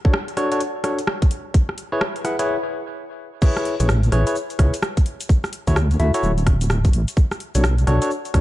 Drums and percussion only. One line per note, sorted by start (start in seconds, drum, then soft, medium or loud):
0.05 kick loud
0.14 cross-stick loud
0.28 closed hi-hat soft
0.37 cross-stick medium
0.37 open hi-hat loud
0.52 closed hi-hat medium
0.60 closed hi-hat medium
0.84 cross-stick medium
0.84 open hi-hat loud
0.99 closed hi-hat medium
1.07 cross-stick loud
1.22 kick loud
1.22 closed hi-hat soft
1.31 open hi-hat loud
1.54 kick loud
1.54 closed hi-hat medium
1.69 cross-stick medium
1.78 open hi-hat loud
2.01 cross-stick loud
2.16 open hi-hat medium
2.25 cross-stick medium
2.25 open hi-hat loud
2.39 closed hi-hat medium
3.42 kick loud
3.42 crash loud
3.42 shaker soft
3.57 cross-stick medium
3.57 shaker soft
3.65 open hi-hat loud
3.80 closed hi-hat medium
3.80 shaker medium
3.89 cross-stick loud
3.89 shaker medium
4.03 closed hi-hat soft
4.03 shaker soft
4.12 cross-stick medium
4.12 open hi-hat loud
4.27 closed hi-hat medium
4.27 shaker medium
4.36 shaker medium
4.50 closed hi-hat soft
4.50 shaker soft
4.59 kick loud
4.59 cross-stick medium
4.59 open hi-hat loud
4.74 closed hi-hat medium
4.74 shaker medium
4.83 cross-stick loud
4.83 shaker medium
4.97 kick loud
4.97 closed hi-hat soft
4.97 shaker soft
5.06 open hi-hat loud
5.21 closed hi-hat medium
5.21 shaker medium
5.29 kick loud
5.29 shaker medium
5.44 cross-stick medium
5.44 shaker soft
5.53 open hi-hat loud
5.67 kick medium
5.67 open hi-hat medium
5.67 shaker medium
5.76 cross-stick loud
5.76 shaker soft
5.91 closed hi-hat soft
5.91 shaker soft
6.00 open hi-hat loud
6.14 closed hi-hat medium
6.14 shaker medium
6.23 shaker medium
6.38 closed hi-hat soft
6.38 shaker soft
6.47 kick loud
6.47 cross-stick medium
6.47 open hi-hat loud
6.61 closed hi-hat medium
6.61 shaker medium
6.70 cross-stick loud
6.70 shaker medium
6.85 kick loud
6.85 closed hi-hat soft
6.85 shaker soft
6.93 open hi-hat loud
7.08 closed hi-hat medium
7.08 shaker medium
7.17 kick loud
7.17 shaker medium
7.31 cross-stick medium
7.31 shaker soft
7.40 open hi-hat loud
7.55 closed hi-hat medium
7.55 shaker medium
7.64 cross-stick loud
7.64 shaker medium
7.78 closed hi-hat soft
7.78 shaker soft
7.87 cross-stick medium
7.87 open hi-hat loud
8.02 closed hi-hat medium
8.02 shaker medium
8.11 shaker medium
8.25 closed hi-hat soft
8.25 shaker soft
8.34 kick loud
8.34 cross-stick medium
8.34 open hi-hat loud